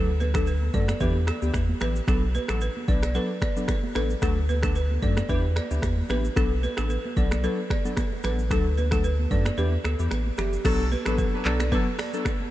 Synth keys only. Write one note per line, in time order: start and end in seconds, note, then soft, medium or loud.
0.35 0.48 F#3 medium
0.35 0.48 A3 medium
0.35 0.48 D4 medium
0.35 0.48 A4 medium
0.74 0.89 F#3 medium
0.74 0.89 A3 medium
0.74 0.90 D4 medium
0.74 0.90 A4 medium
1.00 1.16 E3 loud
1.00 1.16 B3 medium
1.00 1.16 D4 medium
1.00 1.16 G4 loud
1.42 1.55 E3 medium
1.42 1.55 B3 medium
1.42 1.55 D4 medium
1.42 1.55 G4 medium
1.81 1.96 E3 medium
1.81 1.96 B3 medium
1.81 1.97 D4 medium
1.81 1.97 G4 medium
2.07 2.23 F#3 medium
2.07 2.23 B3 medium
2.07 2.23 D4 medium
2.07 2.23 A4 loud
2.49 2.62 F#3 medium
2.49 2.62 B3 medium
2.49 2.62 D4 medium
2.49 2.62 A4 medium
2.88 3.04 F#3 medium
2.88 3.04 B3 medium
2.88 3.04 D4 medium
2.88 3.04 A4 medium
3.15 3.30 F#3 medium
3.15 3.30 B3 medium
3.15 3.31 D4 medium
3.15 3.31 A4 loud
3.56 3.69 F#3 medium
3.56 3.70 B3 medium
3.56 3.70 D4 medium
3.56 3.70 A4 medium
3.95 4.11 F#3 medium
3.95 4.11 B3 medium
3.95 4.11 D4 medium
3.95 4.11 A4 medium
4.22 4.37 F#3 medium
4.22 4.38 A3 medium
4.22 4.38 D4 medium
4.22 4.38 A4 loud
4.63 4.77 F#3 medium
4.63 4.77 A3 medium
4.63 4.77 D4 medium
4.63 4.77 A4 medium
5.02 5.18 F#3 medium
5.02 5.18 A3 medium
5.02 5.18 D4 medium
5.02 5.18 A4 medium
5.29 5.45 E3 medium
5.29 5.45 B3 medium
5.29 5.45 D4 medium
5.29 5.45 G4 loud
5.70 5.84 E3 medium
5.70 5.84 B3 medium
5.70 5.84 D4 medium
5.70 5.84 G4 medium
6.09 6.25 E3 medium
6.09 6.25 B3 medium
6.09 6.25 D4 medium
6.09 6.25 G4 medium
6.36 6.52 F#3 medium
6.36 6.52 B3 medium
6.36 6.52 D4 medium
6.36 6.52 A4 loud
6.78 6.91 F#3 medium
6.78 6.91 B3 medium
6.78 6.91 D4 medium
6.78 6.91 A4 medium
7.16 7.32 F#3 medium
7.16 7.32 B3 medium
7.16 7.32 D4 medium
7.16 7.32 A4 medium
7.43 7.59 F#3 medium
7.43 7.59 B3 medium
7.43 7.59 D4 medium
7.43 7.59 A4 loud
7.85 7.98 F#3 medium
7.85 7.98 B3 medium
7.85 7.98 D4 medium
7.85 7.98 A4 medium
8.24 8.39 F#3 medium
8.24 8.39 B3 medium
8.24 8.40 D4 medium
8.24 8.40 A4 medium
8.50 8.66 F#3 medium
8.50 8.66 A3 medium
8.50 8.66 D4 medium
8.50 8.66 A4 loud
8.92 9.05 F#3 medium
8.92 9.05 A3 medium
8.92 9.05 D4 medium
8.92 9.05 A4 medium
9.31 9.46 F#3 medium
9.31 9.47 A3 medium
9.31 9.47 D4 medium
9.31 9.47 A4 medium
9.58 9.73 E3 loud
9.58 9.73 B3 medium
9.58 9.74 D4 medium
9.58 9.74 G4 loud
9.99 10.12 E3 medium
9.99 10.12 B3 medium
9.99 10.13 D4 medium
9.99 10.13 G4 medium
10.38 10.54 E3 medium
10.38 10.54 B3 medium
10.38 10.54 D4 medium
10.38 10.54 G4 medium
10.65 10.80 F#3 loud
10.65 10.80 B3 medium
10.65 10.81 D4 medium
10.65 10.81 A4 loud
11.06 11.42 F#3 medium
11.06 11.42 B3 medium
11.06 11.42 D4 medium
11.06 11.43 A4 medium
11.45 11.70 F#3 medium
11.45 11.70 B3 medium
11.45 11.70 D4 medium
11.45 11.70 A4 medium
11.72 11.87 F#3 loud
11.72 11.88 B3 medium
11.72 11.88 D4 medium
11.72 11.88 A4 loud
12.13 12.26 F#3 medium
12.13 12.27 B3 medium
12.13 12.27 D4 medium
12.13 12.27 A4 medium